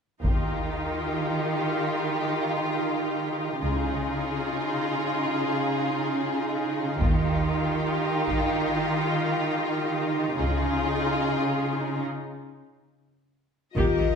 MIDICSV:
0, 0, Header, 1, 8, 480
1, 0, Start_track
1, 0, Tempo, 845070
1, 139, Time_signature, 4, 2, 24, 8
1, 8038, End_track
2, 0, Start_track
2, 0, Title_t, "Violin section"
2, 0, Program_c, 0, 48
2, 134, Note_on_c, 0, 67, 34
2, 2033, Note_off_c, 0, 67, 0
2, 2069, Note_on_c, 0, 68, 37
2, 3961, Note_off_c, 0, 68, 0
2, 3972, Note_on_c, 0, 67, 40
2, 5873, Note_off_c, 0, 67, 0
2, 5898, Note_on_c, 0, 68, 45
2, 6835, Note_off_c, 0, 68, 0
2, 7807, Note_on_c, 0, 75, 37
2, 8038, Note_off_c, 0, 75, 0
2, 8038, End_track
3, 0, Start_track
3, 0, Title_t, "French horn section"
3, 0, Program_c, 1, 60
3, 7805, Note_on_c, 1, 65, 58
3, 8038, Note_off_c, 1, 65, 0
3, 8038, End_track
4, 0, Start_track
4, 0, Title_t, "Violin section"
4, 0, Program_c, 2, 48
4, 131, Note_on_c, 2, 65, 39
4, 2032, Note_off_c, 2, 65, 0
4, 2054, Note_on_c, 2, 65, 41
4, 3953, Note_off_c, 2, 65, 0
4, 3979, Note_on_c, 2, 65, 48
4, 5876, Note_off_c, 2, 65, 0
4, 5890, Note_on_c, 2, 65, 50
4, 6831, Note_off_c, 2, 65, 0
4, 7821, Note_on_c, 2, 70, 41
4, 8038, Note_off_c, 2, 70, 0
4, 8038, End_track
5, 0, Start_track
5, 0, Title_t, "Viola section"
5, 0, Program_c, 3, 48
5, 130, Note_on_c, 3, 63, 34
5, 2031, Note_off_c, 3, 63, 0
5, 2060, Note_on_c, 3, 63, 34
5, 3957, Note_off_c, 3, 63, 0
5, 3982, Note_on_c, 3, 63, 41
5, 5877, Note_off_c, 3, 63, 0
5, 5894, Note_on_c, 3, 63, 45
5, 6833, Note_off_c, 3, 63, 0
5, 7817, Note_on_c, 3, 67, 39
5, 7925, Note_off_c, 3, 67, 0
5, 7932, Note_on_c, 3, 67, 27
5, 7977, Note_off_c, 3, 67, 0
5, 8038, End_track
6, 0, Start_track
6, 0, Title_t, "Cello section"
6, 0, Program_c, 4, 48
6, 137, Note_on_c, 4, 51, 34
6, 2035, Note_off_c, 4, 51, 0
6, 2058, Note_on_c, 4, 49, 37
6, 3955, Note_off_c, 4, 49, 0
6, 3978, Note_on_c, 4, 51, 46
6, 5876, Note_off_c, 4, 51, 0
6, 5895, Note_on_c, 4, 49, 44
6, 6838, Note_off_c, 4, 49, 0
6, 7818, Note_on_c, 4, 51, 44
6, 7863, Note_off_c, 4, 51, 0
6, 7942, Note_on_c, 4, 51, 33
6, 7988, Note_off_c, 4, 51, 0
6, 8038, End_track
7, 0, Start_track
7, 0, Title_t, "Double bass section"
7, 0, Program_c, 5, 48
7, 132, Note_on_c, 5, 39, 37
7, 592, Note_off_c, 5, 39, 0
7, 2056, Note_on_c, 5, 37, 40
7, 2515, Note_off_c, 5, 37, 0
7, 3979, Note_on_c, 5, 39, 48
7, 4436, Note_off_c, 5, 39, 0
7, 5896, Note_on_c, 5, 37, 51
7, 6355, Note_off_c, 5, 37, 0
7, 7815, Note_on_c, 5, 39, 48
7, 7928, Note_off_c, 5, 39, 0
7, 8038, End_track
8, 0, Start_track
8, 0, Title_t, "Taiko and cinematic ensemble drums"
8, 138, Note_on_c, 9, 41, 38
8, 195, Note_off_c, 9, 41, 0
8, 3983, Note_on_c, 9, 41, 42
8, 4040, Note_off_c, 9, 41, 0
8, 4704, Note_on_c, 9, 41, 28
8, 4761, Note_off_c, 9, 41, 0
8, 7818, Note_on_c, 9, 41, 42
8, 7875, Note_off_c, 9, 41, 0
8, 8038, End_track
0, 0, End_of_file